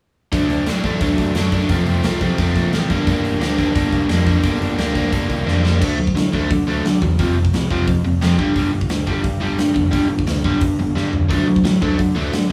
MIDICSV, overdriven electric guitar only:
0, 0, Header, 1, 2, 480
1, 0, Start_track
1, 0, Key_signature, -2, "minor"
1, 0, Tempo, 343053
1, 473, Time_signature, 4, 2, 24, 8
1, 17521, End_track
2, 0, Start_track
2, 0, Title_t, "Overdriven electric guitar"
2, 0, Program_c, 0, 29
2, 448, Note_on_c, 0, 50, 89
2, 454, Note_on_c, 0, 54, 88
2, 461, Note_on_c, 0, 57, 87
2, 466, Note_on_c, 0, 62, 93
2, 907, Note_off_c, 0, 50, 0
2, 914, Note_off_c, 0, 54, 0
2, 924, Note_on_c, 0, 50, 70
2, 931, Note_off_c, 0, 62, 0
2, 931, Note_on_c, 0, 54, 70
2, 936, Note_off_c, 0, 57, 0
2, 942, Note_on_c, 0, 57, 82
2, 948, Note_on_c, 0, 62, 80
2, 1150, Note_off_c, 0, 62, 0
2, 1161, Note_off_c, 0, 57, 0
2, 1163, Note_off_c, 0, 54, 0
2, 1167, Note_on_c, 0, 62, 85
2, 1170, Note_off_c, 0, 50, 0
2, 1178, Note_on_c, 0, 57, 82
2, 1180, Note_on_c, 0, 54, 76
2, 1187, Note_on_c, 0, 50, 69
2, 1401, Note_off_c, 0, 50, 0
2, 1405, Note_off_c, 0, 54, 0
2, 1407, Note_off_c, 0, 57, 0
2, 1410, Note_off_c, 0, 62, 0
2, 1418, Note_on_c, 0, 50, 82
2, 1422, Note_on_c, 0, 54, 94
2, 1424, Note_on_c, 0, 57, 89
2, 1427, Note_on_c, 0, 62, 95
2, 1889, Note_off_c, 0, 50, 0
2, 1891, Note_off_c, 0, 54, 0
2, 1899, Note_off_c, 0, 57, 0
2, 1900, Note_off_c, 0, 62, 0
2, 1905, Note_on_c, 0, 50, 75
2, 1908, Note_on_c, 0, 54, 75
2, 1916, Note_on_c, 0, 57, 69
2, 1917, Note_on_c, 0, 62, 85
2, 2127, Note_off_c, 0, 62, 0
2, 2138, Note_off_c, 0, 54, 0
2, 2139, Note_off_c, 0, 57, 0
2, 2143, Note_on_c, 0, 62, 92
2, 2145, Note_off_c, 0, 50, 0
2, 2154, Note_on_c, 0, 54, 82
2, 2156, Note_on_c, 0, 57, 82
2, 2161, Note_on_c, 0, 50, 76
2, 2371, Note_on_c, 0, 41, 84
2, 2372, Note_off_c, 0, 50, 0
2, 2373, Note_off_c, 0, 62, 0
2, 2374, Note_off_c, 0, 54, 0
2, 2378, Note_on_c, 0, 48, 84
2, 2379, Note_off_c, 0, 57, 0
2, 2380, Note_on_c, 0, 53, 85
2, 2394, Note_on_c, 0, 57, 92
2, 2395, Note_on_c, 0, 60, 93
2, 2835, Note_off_c, 0, 41, 0
2, 2836, Note_off_c, 0, 48, 0
2, 2845, Note_off_c, 0, 57, 0
2, 2847, Note_off_c, 0, 53, 0
2, 2852, Note_on_c, 0, 41, 74
2, 2853, Note_on_c, 0, 48, 77
2, 2854, Note_off_c, 0, 60, 0
2, 2862, Note_on_c, 0, 57, 77
2, 2863, Note_on_c, 0, 53, 73
2, 2871, Note_on_c, 0, 60, 89
2, 3076, Note_off_c, 0, 60, 0
2, 3083, Note_off_c, 0, 57, 0
2, 3089, Note_off_c, 0, 53, 0
2, 3093, Note_on_c, 0, 60, 90
2, 3098, Note_off_c, 0, 48, 0
2, 3100, Note_on_c, 0, 57, 82
2, 3105, Note_off_c, 0, 41, 0
2, 3106, Note_on_c, 0, 53, 73
2, 3115, Note_on_c, 0, 48, 70
2, 3122, Note_on_c, 0, 41, 70
2, 3320, Note_off_c, 0, 41, 0
2, 3326, Note_off_c, 0, 48, 0
2, 3332, Note_off_c, 0, 53, 0
2, 3337, Note_on_c, 0, 41, 84
2, 3340, Note_off_c, 0, 57, 0
2, 3341, Note_off_c, 0, 60, 0
2, 3343, Note_on_c, 0, 48, 81
2, 3349, Note_on_c, 0, 53, 91
2, 3356, Note_on_c, 0, 57, 100
2, 3358, Note_on_c, 0, 60, 90
2, 3803, Note_off_c, 0, 41, 0
2, 3809, Note_off_c, 0, 48, 0
2, 3817, Note_off_c, 0, 53, 0
2, 3820, Note_on_c, 0, 41, 77
2, 3821, Note_off_c, 0, 57, 0
2, 3824, Note_off_c, 0, 60, 0
2, 3826, Note_on_c, 0, 48, 71
2, 3834, Note_on_c, 0, 53, 76
2, 3838, Note_on_c, 0, 57, 88
2, 3841, Note_on_c, 0, 60, 81
2, 4050, Note_off_c, 0, 41, 0
2, 4054, Note_off_c, 0, 48, 0
2, 4056, Note_on_c, 0, 43, 91
2, 4058, Note_off_c, 0, 53, 0
2, 4060, Note_off_c, 0, 57, 0
2, 4061, Note_off_c, 0, 60, 0
2, 4068, Note_on_c, 0, 50, 102
2, 4069, Note_on_c, 0, 55, 93
2, 4077, Note_on_c, 0, 58, 89
2, 4080, Note_on_c, 0, 62, 106
2, 4287, Note_off_c, 0, 62, 0
2, 4290, Note_off_c, 0, 58, 0
2, 4291, Note_off_c, 0, 50, 0
2, 4292, Note_on_c, 0, 62, 95
2, 4294, Note_off_c, 0, 55, 0
2, 4295, Note_on_c, 0, 58, 91
2, 4300, Note_on_c, 0, 55, 88
2, 4307, Note_off_c, 0, 43, 0
2, 4308, Note_on_c, 0, 50, 74
2, 4313, Note_on_c, 0, 43, 86
2, 4748, Note_off_c, 0, 62, 0
2, 4750, Note_off_c, 0, 50, 0
2, 4753, Note_on_c, 0, 62, 92
2, 4755, Note_off_c, 0, 55, 0
2, 4755, Note_off_c, 0, 58, 0
2, 4761, Note_on_c, 0, 55, 72
2, 4761, Note_on_c, 0, 58, 81
2, 4767, Note_on_c, 0, 50, 77
2, 4774, Note_off_c, 0, 43, 0
2, 4780, Note_on_c, 0, 43, 74
2, 5001, Note_off_c, 0, 50, 0
2, 5006, Note_off_c, 0, 43, 0
2, 5011, Note_on_c, 0, 43, 81
2, 5013, Note_off_c, 0, 55, 0
2, 5018, Note_on_c, 0, 50, 74
2, 5019, Note_on_c, 0, 55, 75
2, 5020, Note_off_c, 0, 58, 0
2, 5025, Note_off_c, 0, 62, 0
2, 5026, Note_on_c, 0, 58, 83
2, 5030, Note_on_c, 0, 62, 88
2, 5228, Note_off_c, 0, 58, 0
2, 5232, Note_off_c, 0, 55, 0
2, 5234, Note_off_c, 0, 62, 0
2, 5238, Note_off_c, 0, 50, 0
2, 5239, Note_on_c, 0, 62, 93
2, 5244, Note_on_c, 0, 58, 86
2, 5245, Note_off_c, 0, 43, 0
2, 5249, Note_on_c, 0, 55, 88
2, 5255, Note_on_c, 0, 50, 77
2, 5262, Note_on_c, 0, 43, 81
2, 5708, Note_off_c, 0, 58, 0
2, 5712, Note_off_c, 0, 55, 0
2, 5713, Note_off_c, 0, 50, 0
2, 5713, Note_off_c, 0, 62, 0
2, 5719, Note_on_c, 0, 62, 79
2, 5720, Note_off_c, 0, 43, 0
2, 5725, Note_on_c, 0, 58, 79
2, 5729, Note_on_c, 0, 50, 70
2, 5729, Note_on_c, 0, 55, 70
2, 5737, Note_on_c, 0, 43, 72
2, 5945, Note_off_c, 0, 43, 0
2, 5953, Note_off_c, 0, 50, 0
2, 5954, Note_off_c, 0, 55, 0
2, 5955, Note_off_c, 0, 58, 0
2, 5962, Note_on_c, 0, 43, 90
2, 5970, Note_on_c, 0, 50, 85
2, 5971, Note_on_c, 0, 55, 86
2, 5971, Note_on_c, 0, 58, 100
2, 5975, Note_off_c, 0, 62, 0
2, 5980, Note_on_c, 0, 62, 100
2, 6185, Note_off_c, 0, 62, 0
2, 6198, Note_off_c, 0, 58, 0
2, 6202, Note_on_c, 0, 62, 96
2, 6204, Note_off_c, 0, 55, 0
2, 6208, Note_off_c, 0, 43, 0
2, 6210, Note_off_c, 0, 50, 0
2, 6215, Note_on_c, 0, 58, 99
2, 6221, Note_on_c, 0, 55, 82
2, 6225, Note_on_c, 0, 43, 80
2, 6227, Note_on_c, 0, 50, 92
2, 6671, Note_off_c, 0, 62, 0
2, 6676, Note_off_c, 0, 58, 0
2, 6683, Note_off_c, 0, 55, 0
2, 6688, Note_on_c, 0, 62, 81
2, 6692, Note_off_c, 0, 50, 0
2, 6693, Note_off_c, 0, 43, 0
2, 6693, Note_on_c, 0, 58, 76
2, 6700, Note_on_c, 0, 55, 73
2, 6709, Note_on_c, 0, 43, 64
2, 6709, Note_on_c, 0, 50, 65
2, 6893, Note_off_c, 0, 43, 0
2, 6907, Note_off_c, 0, 50, 0
2, 6910, Note_on_c, 0, 43, 72
2, 6911, Note_off_c, 0, 55, 0
2, 6913, Note_off_c, 0, 62, 0
2, 6914, Note_off_c, 0, 58, 0
2, 6924, Note_on_c, 0, 50, 89
2, 6928, Note_on_c, 0, 55, 78
2, 6930, Note_on_c, 0, 62, 85
2, 6931, Note_on_c, 0, 58, 89
2, 7150, Note_off_c, 0, 62, 0
2, 7156, Note_off_c, 0, 58, 0
2, 7163, Note_off_c, 0, 55, 0
2, 7164, Note_off_c, 0, 50, 0
2, 7167, Note_on_c, 0, 62, 87
2, 7168, Note_off_c, 0, 43, 0
2, 7173, Note_on_c, 0, 58, 92
2, 7180, Note_on_c, 0, 55, 79
2, 7181, Note_on_c, 0, 50, 80
2, 7185, Note_on_c, 0, 43, 76
2, 7634, Note_off_c, 0, 62, 0
2, 7640, Note_off_c, 0, 58, 0
2, 7643, Note_off_c, 0, 55, 0
2, 7647, Note_off_c, 0, 50, 0
2, 7650, Note_on_c, 0, 62, 82
2, 7654, Note_off_c, 0, 43, 0
2, 7657, Note_on_c, 0, 58, 77
2, 7660, Note_on_c, 0, 55, 68
2, 7664, Note_on_c, 0, 50, 64
2, 7671, Note_on_c, 0, 43, 64
2, 7878, Note_off_c, 0, 43, 0
2, 7882, Note_off_c, 0, 50, 0
2, 7887, Note_off_c, 0, 55, 0
2, 7888, Note_off_c, 0, 58, 0
2, 7894, Note_on_c, 0, 43, 89
2, 7898, Note_off_c, 0, 62, 0
2, 7899, Note_on_c, 0, 50, 91
2, 7904, Note_on_c, 0, 55, 96
2, 7905, Note_on_c, 0, 58, 90
2, 7915, Note_on_c, 0, 62, 91
2, 8113, Note_off_c, 0, 50, 0
2, 8126, Note_off_c, 0, 43, 0
2, 8130, Note_off_c, 0, 55, 0
2, 8130, Note_on_c, 0, 50, 79
2, 8131, Note_off_c, 0, 58, 0
2, 8136, Note_off_c, 0, 62, 0
2, 8136, Note_on_c, 0, 54, 91
2, 8139, Note_on_c, 0, 57, 94
2, 8346, Note_off_c, 0, 50, 0
2, 8352, Note_off_c, 0, 54, 0
2, 8363, Note_on_c, 0, 50, 61
2, 8368, Note_off_c, 0, 57, 0
2, 8369, Note_on_c, 0, 54, 71
2, 8588, Note_off_c, 0, 54, 0
2, 8590, Note_off_c, 0, 50, 0
2, 8605, Note_on_c, 0, 54, 76
2, 8606, Note_on_c, 0, 50, 76
2, 8831, Note_off_c, 0, 54, 0
2, 8832, Note_off_c, 0, 50, 0
2, 8848, Note_on_c, 0, 50, 81
2, 8858, Note_on_c, 0, 54, 84
2, 8867, Note_on_c, 0, 57, 89
2, 9078, Note_off_c, 0, 50, 0
2, 9087, Note_off_c, 0, 54, 0
2, 9092, Note_off_c, 0, 57, 0
2, 9095, Note_on_c, 0, 50, 66
2, 9103, Note_on_c, 0, 54, 77
2, 9316, Note_off_c, 0, 50, 0
2, 9320, Note_off_c, 0, 54, 0
2, 9337, Note_on_c, 0, 50, 91
2, 9348, Note_on_c, 0, 54, 94
2, 9351, Note_on_c, 0, 57, 92
2, 9566, Note_off_c, 0, 50, 0
2, 9572, Note_off_c, 0, 54, 0
2, 9573, Note_off_c, 0, 57, 0
2, 9591, Note_on_c, 0, 50, 67
2, 9605, Note_on_c, 0, 54, 79
2, 9803, Note_off_c, 0, 50, 0
2, 9811, Note_off_c, 0, 54, 0
2, 9827, Note_on_c, 0, 50, 72
2, 9841, Note_on_c, 0, 54, 81
2, 10042, Note_off_c, 0, 50, 0
2, 10048, Note_off_c, 0, 54, 0
2, 10069, Note_on_c, 0, 41, 85
2, 10073, Note_on_c, 0, 48, 87
2, 10081, Note_on_c, 0, 53, 98
2, 10292, Note_off_c, 0, 41, 0
2, 10294, Note_off_c, 0, 48, 0
2, 10298, Note_off_c, 0, 53, 0
2, 10322, Note_on_c, 0, 41, 70
2, 10334, Note_on_c, 0, 48, 75
2, 10529, Note_off_c, 0, 41, 0
2, 10535, Note_off_c, 0, 48, 0
2, 10562, Note_on_c, 0, 41, 65
2, 10563, Note_on_c, 0, 48, 68
2, 10769, Note_off_c, 0, 41, 0
2, 10770, Note_off_c, 0, 48, 0
2, 10788, Note_on_c, 0, 41, 78
2, 10797, Note_on_c, 0, 48, 86
2, 10801, Note_on_c, 0, 53, 85
2, 11011, Note_off_c, 0, 41, 0
2, 11016, Note_off_c, 0, 48, 0
2, 11018, Note_off_c, 0, 53, 0
2, 11031, Note_on_c, 0, 48, 77
2, 11032, Note_on_c, 0, 41, 67
2, 11243, Note_off_c, 0, 48, 0
2, 11244, Note_off_c, 0, 41, 0
2, 11260, Note_on_c, 0, 48, 80
2, 11261, Note_on_c, 0, 41, 74
2, 11478, Note_off_c, 0, 41, 0
2, 11478, Note_off_c, 0, 48, 0
2, 11492, Note_on_c, 0, 41, 79
2, 11500, Note_on_c, 0, 48, 95
2, 11507, Note_on_c, 0, 53, 94
2, 11720, Note_off_c, 0, 41, 0
2, 11725, Note_on_c, 0, 43, 92
2, 11727, Note_off_c, 0, 48, 0
2, 11731, Note_off_c, 0, 53, 0
2, 11738, Note_on_c, 0, 50, 92
2, 11738, Note_on_c, 0, 55, 108
2, 11955, Note_off_c, 0, 43, 0
2, 11966, Note_off_c, 0, 50, 0
2, 11966, Note_off_c, 0, 55, 0
2, 11972, Note_on_c, 0, 43, 85
2, 11981, Note_on_c, 0, 50, 86
2, 11981, Note_on_c, 0, 55, 86
2, 12198, Note_off_c, 0, 50, 0
2, 12199, Note_off_c, 0, 43, 0
2, 12208, Note_off_c, 0, 55, 0
2, 12214, Note_on_c, 0, 50, 67
2, 12216, Note_on_c, 0, 43, 69
2, 12435, Note_off_c, 0, 50, 0
2, 12436, Note_off_c, 0, 43, 0
2, 12454, Note_on_c, 0, 43, 67
2, 12461, Note_on_c, 0, 50, 80
2, 12675, Note_off_c, 0, 43, 0
2, 12678, Note_off_c, 0, 50, 0
2, 12690, Note_on_c, 0, 43, 85
2, 12701, Note_on_c, 0, 50, 87
2, 12710, Note_on_c, 0, 55, 86
2, 12912, Note_off_c, 0, 43, 0
2, 12914, Note_off_c, 0, 50, 0
2, 12929, Note_on_c, 0, 43, 66
2, 12931, Note_on_c, 0, 50, 75
2, 12933, Note_off_c, 0, 55, 0
2, 13142, Note_off_c, 0, 43, 0
2, 13153, Note_off_c, 0, 50, 0
2, 13159, Note_on_c, 0, 43, 83
2, 13171, Note_on_c, 0, 50, 85
2, 13179, Note_on_c, 0, 55, 102
2, 13392, Note_off_c, 0, 43, 0
2, 13397, Note_off_c, 0, 50, 0
2, 13407, Note_off_c, 0, 55, 0
2, 13409, Note_on_c, 0, 43, 65
2, 13414, Note_on_c, 0, 50, 81
2, 13617, Note_off_c, 0, 43, 0
2, 13627, Note_off_c, 0, 50, 0
2, 13634, Note_on_c, 0, 43, 75
2, 13643, Note_on_c, 0, 50, 85
2, 13852, Note_off_c, 0, 43, 0
2, 13865, Note_off_c, 0, 50, 0
2, 13869, Note_on_c, 0, 43, 91
2, 13881, Note_on_c, 0, 55, 96
2, 13882, Note_on_c, 0, 50, 90
2, 14101, Note_off_c, 0, 43, 0
2, 14111, Note_off_c, 0, 50, 0
2, 14118, Note_off_c, 0, 55, 0
2, 14118, Note_on_c, 0, 43, 71
2, 14127, Note_on_c, 0, 50, 68
2, 14348, Note_off_c, 0, 43, 0
2, 14352, Note_off_c, 0, 50, 0
2, 14370, Note_on_c, 0, 43, 59
2, 14371, Note_on_c, 0, 50, 76
2, 14594, Note_off_c, 0, 43, 0
2, 14594, Note_off_c, 0, 50, 0
2, 14616, Note_on_c, 0, 43, 87
2, 14625, Note_on_c, 0, 50, 93
2, 14626, Note_on_c, 0, 55, 100
2, 14841, Note_off_c, 0, 43, 0
2, 14845, Note_off_c, 0, 50, 0
2, 14851, Note_off_c, 0, 55, 0
2, 14857, Note_on_c, 0, 43, 72
2, 14861, Note_on_c, 0, 50, 70
2, 15078, Note_off_c, 0, 43, 0
2, 15079, Note_off_c, 0, 50, 0
2, 15096, Note_on_c, 0, 43, 74
2, 15100, Note_on_c, 0, 50, 76
2, 15311, Note_off_c, 0, 43, 0
2, 15319, Note_off_c, 0, 50, 0
2, 15328, Note_on_c, 0, 43, 79
2, 15333, Note_on_c, 0, 50, 80
2, 15337, Note_on_c, 0, 55, 91
2, 15554, Note_off_c, 0, 43, 0
2, 15565, Note_off_c, 0, 50, 0
2, 15568, Note_off_c, 0, 55, 0
2, 15571, Note_on_c, 0, 43, 70
2, 15581, Note_on_c, 0, 50, 77
2, 15791, Note_off_c, 0, 50, 0
2, 15795, Note_off_c, 0, 43, 0
2, 15807, Note_on_c, 0, 50, 79
2, 15820, Note_on_c, 0, 54, 82
2, 15823, Note_on_c, 0, 57, 94
2, 16037, Note_off_c, 0, 50, 0
2, 16045, Note_off_c, 0, 54, 0
2, 16051, Note_off_c, 0, 57, 0
2, 16054, Note_on_c, 0, 50, 58
2, 16062, Note_on_c, 0, 54, 72
2, 16270, Note_off_c, 0, 50, 0
2, 16281, Note_off_c, 0, 54, 0
2, 16287, Note_on_c, 0, 50, 58
2, 16298, Note_on_c, 0, 54, 75
2, 16514, Note_off_c, 0, 50, 0
2, 16519, Note_off_c, 0, 54, 0
2, 16534, Note_on_c, 0, 50, 86
2, 16543, Note_on_c, 0, 54, 85
2, 16550, Note_on_c, 0, 57, 87
2, 16755, Note_off_c, 0, 50, 0
2, 16762, Note_off_c, 0, 54, 0
2, 16772, Note_on_c, 0, 50, 65
2, 16775, Note_off_c, 0, 57, 0
2, 16779, Note_on_c, 0, 54, 81
2, 16992, Note_off_c, 0, 50, 0
2, 17000, Note_off_c, 0, 54, 0
2, 17009, Note_on_c, 0, 50, 82
2, 17015, Note_on_c, 0, 54, 101
2, 17016, Note_on_c, 0, 57, 105
2, 17237, Note_off_c, 0, 54, 0
2, 17238, Note_off_c, 0, 50, 0
2, 17249, Note_off_c, 0, 57, 0
2, 17254, Note_on_c, 0, 54, 69
2, 17255, Note_on_c, 0, 50, 67
2, 17478, Note_off_c, 0, 54, 0
2, 17479, Note_off_c, 0, 50, 0
2, 17521, End_track
0, 0, End_of_file